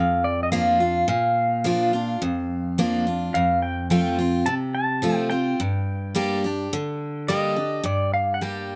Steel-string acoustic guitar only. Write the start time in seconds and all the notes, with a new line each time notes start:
Already playing: F2
0.52 F3 A#3 D4 F4
0.80 D4 F4
1.08 A#2
1.64 F3 A#3 D4 F4
1.93 D4 F4
2.22 F2
2.78 F3 A#3 D4 F4
3.07 D4 F4
3.35 F2
3.90 F3 A3 C4 F4
4.19 C4 F4
4.46 C3
5.02 F3 A3 C4 F4
5.31 C4 F4
5.60 G2
6.15 G3 A#3 D4 G4
6.44 D4 G4
6.73 D3
7.28 G3 A#3 D4 G4
7.56 D4 G4
7.84 G2
8.41 G3 A#3 D4 G4